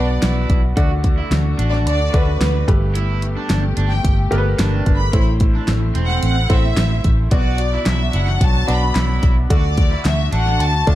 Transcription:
0.00 0.18 B1 medium
0.00 0.78 B2 medium
0.00 0.75 F#3 medium
0.00 0.75 B3 medium
0.00 0.79 B3 medium
0.00 0.75 D4 medium
0.00 0.77 F#4 medium
0.00 0.57 B4 medium
0.00 0.49 D5 medium
0.00 0.77 D5 medium
0.22 0.45 B1 medium
0.22 0.61 E4 medium
0.22 snare loud
0.22 closed hi-hat medium
0.50 0.72 B1 medium
0.50 kick medium
0.50 closed hi-hat medium
0.77 1.22 D2 loud
0.77 1.55 D3 medium
0.77 2.66 D3 medium
0.77 1.59 A3 medium
0.77 7.28 A3 medium
0.77 1.59 F#4 medium
0.77 0.90 F#4 medium
0.77 2.66 F#4 medium
0.77 1.60 D5 medium
0.77 kick loud
0.77 closed hi-hat medium
1.04 kick medium
1.04 closed hi-hat medium
1.18 1.31 E4 medium
1.31 1.53 D2 medium
1.31 snare medium
1.31 closed hi-hat medium
1.59 1.86 A1 medium
1.59 1.97 D4 medium
1.59 closed hi-hat medium
1.69 1.77 D5 medium
1.69 snare soft
1.86 2.08 D2 medium
1.86 2.12 D5 medium
1.86 closed hi-hat medium
2.13 2.36 D2 medium
2.13 2.66 A3 medium
2.13 2.26 D4 medium
2.13 2.68 F#4 medium
2.13 2.69 B4 medium
2.13 2.68 D5 medium
2.13 kick medium
2.13 closed hi-hat medium
2.41 2.63 D2 medium
2.41 snare loud
2.41 closed hi-hat medium
2.68 3.35 G1 medium
2.68 3.46 G2 medium
2.68 3.55 A3 medium
2.68 5.11 B3 medium
2.68 3.55 G4 medium
2.68 5.11 G4 medium
2.68 3.55 B4 medium
2.68 kick medium
2.68 closed hi-hat medium
2.95 3.21 E4 medium
2.95 closed hi-hat medium
3.22 closed hi-hat medium
3.36 3.62 D4 medium
3.50 3.72 G1 medium
3.50 snare medium
3.50 closed hi-hat medium
3.77 4.00 G1 medium
3.77 3.90 D4 medium
3.77 closed hi-hat medium
3.87 4.12 G5 medium
3.87 snare soft
4.04 4.27 G1 loud
4.04 kick medium
4.04 closed hi-hat medium
4.31 4.54 G1 medium
4.31 4.93 A3 medium
4.31 4.45 B3 medium
4.31 4.93 G4 medium
4.31 4.38 A#4 medium
4.31 closed hi-hat medium
4.38 4.97 B4 medium
4.59 4.81 G1 medium
4.59 4.97 D4 medium
4.59 snare loud
4.59 closed hi-hat medium
4.86 5.09 G1 loud
4.86 kick medium
4.86 closed hi-hat medium
4.96 5.21 B5 medium
5.13 5.58 A1 loud
5.13 5.91 A2 medium
5.13 5.96 A3 medium
5.13 7.30 C4 medium
5.13 7.30 E4 medium
5.13 5.27 E4 loud
5.13 5.96 E4 medium
5.13 5.96 C5 medium
5.13 kick loud
5.13 closed hi-hat medium
5.40 kick medium
5.40 closed hi-hat medium
5.55 5.68 D4 medium
5.68 5.91 A1 medium
5.68 snare medium
5.68 closed hi-hat medium
5.95 6.18 E1 medium
5.95 6.34 C4 medium
5.95 closed hi-hat medium
6.05 6.22 F#5 medium
6.05 snare soft
6.23 6.45 A1 medium
6.23 6.49 F#5 medium
6.23 closed hi-hat medium
6.49 6.72 A1 medium
6.49 7.12 A3 medium
6.49 6.63 C4 medium
6.49 7.12 E4 medium
6.49 7.12 C5 medium
6.49 7.05 E5 medium
6.49 kick medium
6.49 closed hi-hat medium
6.77 6.99 A1 medium
6.77 snare loud
6.77 closed hi-hat medium
7.04 7.27 A1 loud
7.04 kick medium
7.04 closed hi-hat medium
7.31 7.77 B1 medium
7.31 8.10 B2 medium
7.31 9.48 F#3 medium
7.31 8.14 B3 medium
7.31 9.49 B3 medium
7.31 9.49 D4 medium
7.31 8.14 F#4 medium
7.31 7.58 F#4 medium
7.31 8.14 D5 medium
7.31 7.83 D5 medium
7.31 kick loud
7.31 closed hi-hat medium
7.58 closed hi-hat medium
7.74 7.99 E4 medium
7.86 8.09 B1 medium
7.86 8.14 E5 medium
7.86 snare medium
7.86 clap medium
7.86 closed hi-hat medium
8.13 8.36 F#1 medium
8.13 8.27 E4 medium
8.13 8.42 F#5 medium
8.13 closed hi-hat medium
8.27 snare soft
8.41 8.63 B1 loud
8.41 8.69 A5 loud
8.41 kick medium
8.41 closed hi-hat medium
8.67 8.91 B1 medium
8.67 9.30 B3 medium
8.67 8.81 D4 medium
8.67 9.30 F#4 medium
8.67 9.30 D5 medium
8.67 9.24 B5 medium
8.67 closed hi-hat medium
8.95 9.18 B1 loud
8.95 9.34 E4 medium
8.95 snare medium
8.95 clap medium
8.95 closed hi-hat medium
9.23 9.45 B1 loud
9.23 kick medium
9.23 closed hi-hat medium
9.50 9.95 D2 medium
9.50 10.28 D3 medium
9.50 10.95 D3 medium
9.50 10.33 A3 medium
9.50 10.95 A3 medium
9.50 10.33 F#4 medium
9.50 10.95 F#4 medium
9.50 9.64 F#4 loud
9.50 10.33 D5 medium
9.50 10.02 D5 medium
9.50 kick loud
9.50 closed hi-hat medium
9.77 kick medium
9.77 closed hi-hat medium
9.91 10.04 E4 medium
10.05 10.27 D2 medium
10.05 10.33 E5 medium
10.05 snare medium
10.05 clap medium
10.05 closed hi-hat medium
10.32 10.59 A1 medium
10.32 10.71 D4 medium
10.32 10.59 F#5 medium
10.32 closed hi-hat medium
10.46 snare soft
10.59 10.82 D2 medium
10.59 10.87 A5 loud
10.59 closed hi-hat medium
10.87 10.95 D2 loud
10.87 10.95 A3 medium
10.87 10.95 D4 medium
10.87 10.94 F4 medium
10.87 10.95 D5 medium
10.87 10.95 A5 medium
10.87 kick medium
10.87 closed hi-hat medium

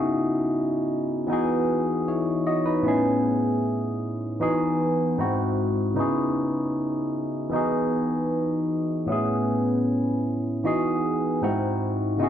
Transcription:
0.00 1.24 C#3 medium
0.00 1.25 B3 medium
0.00 1.26 D#4 medium
0.00 1.26 E4 medium
0.00 1.27 F#4 medium
0.00 1.27 G#4 medium
1.27 2.81 E3 medium
1.27 2.81 B3 medium
1.27 2.06 D#4 medium
1.32 2.07 F#4 medium
1.32 2.07 G#4 medium
2.08 2.45 E4 soft
2.08 2.45 C#5 medium
2.47 2.65 F#4 medium
2.47 2.65 D#5 medium
2.66 3.03 D#4 medium
2.66 3.03 B4 medium
2.82 4.36 A2 medium
2.82 4.37 B3 medium
2.82 4.38 C#4 medium
2.86 4.39 E4 medium
2.86 4.39 G#4 medium
4.40 5.18 E3 medium
4.40 5.19 B3 medium
4.40 5.18 D#4 medium
4.40 5.19 F#4 medium
4.40 5.20 G#4 medium
5.18 5.96 G#2 medium
5.18 5.96 C4 medium
5.18 5.95 D#4 medium
5.18 5.96 E4 medium
5.18 5.98 F#4 medium
5.94 7.48 C#3 medium
5.94 7.49 B3 medium
5.94 7.49 D#4 medium
5.94 7.50 E4 medium
5.99 7.51 F#4 medium
5.99 7.51 G#4 medium
7.49 9.04 E3 medium
7.49 9.05 B3 medium
7.49 9.05 D#4 medium
7.54 9.06 F#4 medium
7.54 9.07 G#4 medium
9.06 10.60 A2 medium
9.06 10.60 B3 medium
9.06 10.61 C#4 medium
9.10 10.62 E4 medium
9.10 10.63 G#4 medium
10.64 11.42 E3 medium
10.64 11.42 B3 medium
10.64 11.42 D#4 medium
10.64 11.43 F#4 medium
10.64 11.43 G#4 medium
11.41 12.19 G#2 medium
11.41 12.20 C4 medium
11.41 12.19 D#4 medium
11.41 12.20 E4 medium
11.41 12.21 F#4 medium
12.17 12.29 C#3 medium
12.17 12.29 B3 medium
12.17 12.29 D#4 medium
12.17 12.29 E4 medium
12.22 12.29 F#4 medium
12.22 12.29 G#4 medium

